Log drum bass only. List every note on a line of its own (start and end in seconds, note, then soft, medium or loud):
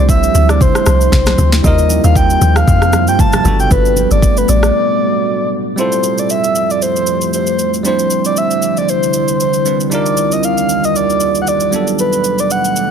0.00 0.31 C2 loud
0.35 0.70 D2 medium
0.87 1.09 C2 medium
1.12 1.35 B1 loud
1.38 1.61 D2 medium
1.64 2.00 D#2 loud
2.04 2.37 D#2 loud
2.41 2.64 D#2 loud
2.68 3.09 F2 loud
3.07 3.41 G2 loud
3.45 3.68 G1 loud
3.71 4.07 G1 loud
4.11 4.44 G1 loud
4.49 4.71 A1 loud